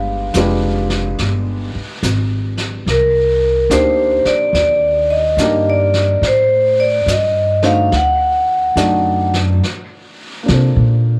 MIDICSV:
0, 0, Header, 1, 6, 480
1, 0, Start_track
1, 0, Key_signature, -2, "minor"
1, 0, Tempo, 837989
1, 1644, Time_signature, 4, 2, 24, 8
1, 3561, Tempo, 849858
1, 6373, End_track
2, 0, Start_track
2, 0, Title_t, "Vibraphone"
2, 0, Program_c, 0, 11
2, 0, Note_on_c, 0, 77, 66
2, 491, Note_off_c, 0, 77, 0
2, 1663, Note_on_c, 0, 70, 70
2, 2137, Note_on_c, 0, 72, 68
2, 2146, Note_off_c, 0, 70, 0
2, 2442, Note_on_c, 0, 74, 68
2, 2455, Note_off_c, 0, 72, 0
2, 2599, Note_off_c, 0, 74, 0
2, 2606, Note_on_c, 0, 74, 71
2, 2924, Note_on_c, 0, 75, 75
2, 2931, Note_off_c, 0, 74, 0
2, 3250, Note_off_c, 0, 75, 0
2, 3263, Note_on_c, 0, 74, 69
2, 3579, Note_off_c, 0, 74, 0
2, 3591, Note_on_c, 0, 72, 78
2, 3890, Note_on_c, 0, 74, 72
2, 3898, Note_off_c, 0, 72, 0
2, 4049, Note_off_c, 0, 74, 0
2, 4061, Note_on_c, 0, 75, 66
2, 4371, Note_on_c, 0, 77, 80
2, 4374, Note_off_c, 0, 75, 0
2, 4528, Note_off_c, 0, 77, 0
2, 4541, Note_on_c, 0, 78, 69
2, 5307, Note_off_c, 0, 78, 0
2, 6373, End_track
3, 0, Start_track
3, 0, Title_t, "Grand piano"
3, 0, Program_c, 1, 0
3, 0, Control_c, 1, 64, 127
3, 0, Note_on_c, 1, 56, 53
3, 0, Note_on_c, 1, 62, 50
3, 0, Note_on_c, 1, 65, 49
3, 0, Note_on_c, 1, 67, 49
3, 0, Note_on_c, 1, 71, 61
3, 170, Note_off_c, 1, 56, 0
3, 172, Note_off_c, 1, 62, 0
3, 172, Note_off_c, 1, 67, 0
3, 173, Note_off_c, 1, 65, 0
3, 173, Note_off_c, 1, 71, 0
3, 209, Note_on_c, 1, 65, 48
3, 213, Note_on_c, 1, 71, 57
3, 215, Note_on_c, 1, 56, 54
3, 215, Note_on_c, 1, 62, 46
3, 215, Note_on_c, 1, 67, 51
3, 492, Note_off_c, 1, 65, 0
3, 494, Note_off_c, 1, 71, 0
3, 495, Note_off_c, 1, 56, 0
3, 495, Note_off_c, 1, 62, 0
3, 495, Note_off_c, 1, 67, 0
3, 1651, Control_c, 1, 64, 0
3, 1750, Control_c, 1, 64, 127
3, 2125, Note_on_c, 1, 63, 46
3, 2127, Note_on_c, 1, 58, 46
3, 2127, Note_on_c, 1, 62, 44
3, 2128, Note_on_c, 1, 67, 45
3, 2130, Note_on_c, 1, 72, 56
3, 2409, Note_off_c, 1, 58, 0
3, 2409, Note_off_c, 1, 62, 0
3, 2409, Note_off_c, 1, 63, 0
3, 2410, Note_off_c, 1, 67, 0
3, 2411, Note_off_c, 1, 72, 0
3, 3092, Note_on_c, 1, 62, 50
3, 3094, Note_on_c, 1, 63, 45
3, 3095, Note_on_c, 1, 58, 50
3, 3095, Note_on_c, 1, 67, 46
3, 3099, Note_on_c, 1, 70, 54
3, 3370, Note_off_c, 1, 62, 0
3, 3371, Note_off_c, 1, 58, 0
3, 3371, Note_off_c, 1, 63, 0
3, 3371, Note_off_c, 1, 67, 0
3, 3373, Note_off_c, 1, 70, 0
3, 3565, Control_c, 1, 64, 0
3, 3649, Control_c, 1, 64, 127
3, 4360, Note_on_c, 1, 63, 54
3, 4362, Note_on_c, 1, 57, 52
3, 4362, Note_on_c, 1, 66, 48
3, 4362, Note_on_c, 1, 72, 59
3, 4363, Note_on_c, 1, 62, 50
3, 4502, Note_off_c, 1, 63, 0
3, 4503, Note_off_c, 1, 57, 0
3, 4503, Note_off_c, 1, 62, 0
3, 4503, Note_off_c, 1, 66, 0
3, 4503, Note_off_c, 1, 72, 0
3, 4521, Control_c, 1, 64, 0
3, 4633, Control_c, 1, 64, 127
3, 5000, Note_on_c, 1, 57, 49
3, 5002, Note_on_c, 1, 62, 44
3, 5003, Note_on_c, 1, 63, 46
3, 5003, Note_on_c, 1, 66, 44
3, 5007, Note_on_c, 1, 74, 53
3, 5287, Note_off_c, 1, 57, 0
3, 5287, Note_off_c, 1, 62, 0
3, 5288, Note_off_c, 1, 63, 0
3, 5288, Note_off_c, 1, 66, 0
3, 5290, Note_off_c, 1, 74, 0
3, 5488, Control_c, 1, 64, 0
3, 5595, Control_c, 1, 64, 127
3, 5941, Note_on_c, 1, 58, 40
3, 5958, Note_on_c, 1, 62, 37
3, 5971, Note_on_c, 1, 65, 34
3, 5991, Note_on_c, 1, 69, 36
3, 6002, Note_on_c, 1, 72, 45
3, 6373, Note_off_c, 1, 58, 0
3, 6373, Note_off_c, 1, 62, 0
3, 6373, Note_off_c, 1, 65, 0
3, 6373, Note_off_c, 1, 69, 0
3, 6373, Note_off_c, 1, 72, 0
3, 6373, End_track
4, 0, Start_track
4, 0, Title_t, "Upright bass"
4, 0, Program_c, 2, 32
4, 0, Note_on_c, 2, 31, 71
4, 190, Note_off_c, 2, 31, 0
4, 203, Note_on_c, 2, 29, 78
4, 670, Note_off_c, 2, 29, 0
4, 684, Note_on_c, 2, 31, 75
4, 979, Note_off_c, 2, 31, 0
4, 1161, Note_on_c, 2, 32, 77
4, 1628, Note_off_c, 2, 32, 0
4, 1640, Note_on_c, 2, 36, 69
4, 2106, Note_off_c, 2, 36, 0
4, 2118, Note_on_c, 2, 38, 74
4, 2414, Note_off_c, 2, 38, 0
4, 2595, Note_on_c, 2, 39, 75
4, 3061, Note_off_c, 2, 39, 0
4, 3075, Note_on_c, 2, 43, 67
4, 3542, Note_off_c, 2, 43, 0
4, 3560, Note_on_c, 2, 45, 71
4, 4022, Note_off_c, 2, 45, 0
4, 4039, Note_on_c, 2, 43, 70
4, 4502, Note_off_c, 2, 43, 0
4, 4524, Note_on_c, 2, 38, 74
4, 4987, Note_off_c, 2, 38, 0
4, 4995, Note_on_c, 2, 42, 67
4, 5466, Note_off_c, 2, 42, 0
4, 5974, Note_on_c, 2, 48, 65
4, 6122, Note_off_c, 2, 48, 0
4, 6128, Note_on_c, 2, 46, 56
4, 6373, Note_off_c, 2, 46, 0
4, 6373, End_track
5, 0, Start_track
5, 0, Title_t, "Muted upright bass strokes"
5, 1003, Note_on_c, 9, 29, 32
5, 1060, Note_off_c, 9, 29, 0
5, 2435, Note_on_c, 9, 29, 36
5, 2493, Note_off_c, 9, 29, 0
5, 6373, End_track
6, 0, Start_track
6, 0, Title_t, "Drums"
6, 194, Note_on_c, 9, 38, 49
6, 194, Note_on_c, 9, 44, 53
6, 251, Note_off_c, 9, 38, 0
6, 251, Note_off_c, 9, 44, 0
6, 514, Note_on_c, 9, 38, 35
6, 571, Note_off_c, 9, 38, 0
6, 679, Note_on_c, 9, 25, 39
6, 679, Note_on_c, 9, 38, 36
6, 736, Note_off_c, 9, 38, 0
6, 1163, Note_on_c, 9, 38, 48
6, 1163, Note_on_c, 9, 44, 45
6, 1220, Note_off_c, 9, 38, 0
6, 1220, Note_off_c, 9, 44, 0
6, 1475, Note_on_c, 9, 38, 33
6, 1532, Note_off_c, 9, 38, 0
6, 1645, Note_off_c, 9, 25, 0
6, 1645, Note_on_c, 9, 25, 38
6, 1645, Note_on_c, 9, 38, 34
6, 1703, Note_off_c, 9, 38, 0
6, 2123, Note_on_c, 9, 38, 50
6, 2123, Note_on_c, 9, 44, 53
6, 2180, Note_off_c, 9, 38, 0
6, 2180, Note_off_c, 9, 44, 0
6, 2436, Note_on_c, 9, 38, 32
6, 2493, Note_off_c, 9, 38, 0
6, 2604, Note_off_c, 9, 25, 0
6, 2604, Note_on_c, 9, 25, 37
6, 2604, Note_on_c, 9, 38, 33
6, 2661, Note_off_c, 9, 38, 0
6, 3082, Note_on_c, 9, 38, 47
6, 3082, Note_on_c, 9, 44, 47
6, 3140, Note_off_c, 9, 38, 0
6, 3140, Note_off_c, 9, 44, 0
6, 3400, Note_on_c, 9, 38, 32
6, 3457, Note_off_c, 9, 38, 0
6, 3567, Note_off_c, 9, 25, 0
6, 3567, Note_on_c, 9, 25, 42
6, 3567, Note_on_c, 9, 38, 35
6, 3624, Note_off_c, 9, 38, 0
6, 4049, Note_on_c, 9, 38, 51
6, 4049, Note_on_c, 9, 44, 51
6, 4105, Note_off_c, 9, 38, 0
6, 4105, Note_off_c, 9, 44, 0
6, 4356, Note_on_c, 9, 38, 33
6, 4412, Note_off_c, 9, 38, 0
6, 4523, Note_off_c, 9, 25, 0
6, 4523, Note_on_c, 9, 25, 38
6, 4523, Note_on_c, 9, 38, 35
6, 4579, Note_off_c, 9, 38, 0
6, 5002, Note_on_c, 9, 38, 49
6, 5002, Note_on_c, 9, 44, 43
6, 5058, Note_off_c, 9, 38, 0
6, 5058, Note_off_c, 9, 44, 0
6, 5323, Note_on_c, 9, 38, 31
6, 5379, Note_off_c, 9, 38, 0
6, 5491, Note_off_c, 9, 25, 0
6, 5491, Note_on_c, 9, 25, 31
6, 5491, Note_on_c, 9, 38, 27
6, 5547, Note_off_c, 9, 38, 0
6, 5970, Note_on_c, 9, 38, 42
6, 6026, Note_off_c, 9, 38, 0
6, 6373, Note_off_c, 9, 25, 0
6, 6373, End_track
0, 0, End_of_file